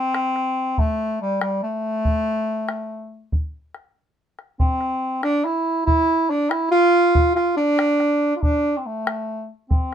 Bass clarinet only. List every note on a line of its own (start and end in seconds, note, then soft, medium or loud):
0.00 0.80 C4 loud
0.79 1.20 A3 loud
1.22 1.40 G3 medium
1.42 1.61 G3 medium
1.63 3.28 A3 loud
4.60 5.19 C4 loud
5.24 5.46 D4 loud
5.45 5.85 E4 loud
5.86 6.31 E4 loud
6.30 6.52 D4 loud
6.50 6.70 E4 loud
6.71 7.32 F4 loud
7.35 7.56 F4 loud
7.57 8.31 D4 loud
8.36 8.43 F4 medium
8.42 8.78 D4 loud
8.77 8.88 C4 medium
8.86 9.50 A3 medium
9.70 9.95 C4 medium